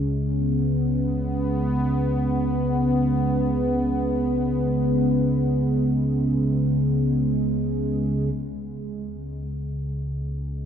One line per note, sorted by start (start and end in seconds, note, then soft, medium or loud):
0.00 8.35 C#2 medium
0.00 8.35 C#3 medium
0.00 10.66 C#3 medium
0.00 10.66 G#3 medium
0.00 0.60 C#4 medium
0.28 8.34 B3 medium
8.36 10.66 C#2 medium
8.36 10.66 C#3 medium